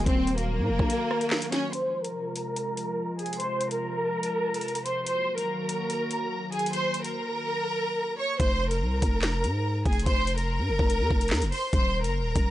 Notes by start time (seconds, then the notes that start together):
Already playing: D#3 F#3 A#3 F#4
0.06 D#1 C4 C5, kick, closed hi-hat
0.27 closed hi-hat
0.38 A#3 A#4, closed hi-hat
0.59 A#2
0.69 D#1
0.79 A#1, kick
0.90 closed hi-hat
1.11 cross-stick
1.21 closed hi-hat
1.31 snare, clap
1.42 closed hi-hat
1.52 C#4 C#5, snare, closed hi-hat
1.73 C3 F3 G#3 F4 C5 C6, closed hi-hat
2.04 A#4 A#5, closed hi-hat
2.36 closed hi-hat
2.56 closed hi-hat
2.77 closed hi-hat
3.19 G#4 G#5, closed hi-hat
3.26 closed hi-hat
3.33 closed hi-hat
3.40 C5 C6, closed hi-hat
3.61 closed hi-hat
3.71 A#4 A#5, closed hi-hat
4.23 closed hi-hat
4.54 closed hi-hat
4.61 closed hi-hat
4.68 closed hi-hat
4.75 closed hi-hat
4.86 C5 C6, closed hi-hat
5.06 D#3 F#3 A#3 F#4 C5 C6, closed hi-hat
5.38 A#4 A#5, closed hi-hat
5.69 closed hi-hat
5.90 closed hi-hat
6.11 closed hi-hat
6.52 G#4 G#5, closed hi-hat
6.59 closed hi-hat
6.66 closed hi-hat
6.73 C5 C6, closed hi-hat
6.94 closed hi-hat
7.04 A#4 A#5, closed hi-hat
8.19 C#5 C#6
8.40 F1 C5 C6, kick, closed hi-hat
8.71 A#4 A#5, closed hi-hat
8.81 C2
9.02 F1, kick, closed hi-hat
9.22 snare, clap, closed hi-hat
9.44 G#2, closed hi-hat
9.86 F1 G#4 G#5, kick, closed hi-hat
9.93 closed hi-hat
9.99 closed hi-hat
10.06 F1 C5 C6, kick, closed hi-hat
10.27 closed hi-hat
10.37 A#4 A#5, closed hi-hat
10.58 G#2
10.69 F1
10.79 F1, kick
10.90 closed hi-hat
11.00 F2
11.11 F1, kick
11.21 closed hi-hat
11.28 F2, snare, clap, closed hi-hat
11.35 closed hi-hat
11.42 F1, closed hi-hat
11.52 C5 C6, open hi-hat
11.73 D#1 C5 C6, kick, closed hi-hat
12.04 F#1 A#4 A#5, closed hi-hat
12.20 D#1
12.36 D#1, kick, closed hi-hat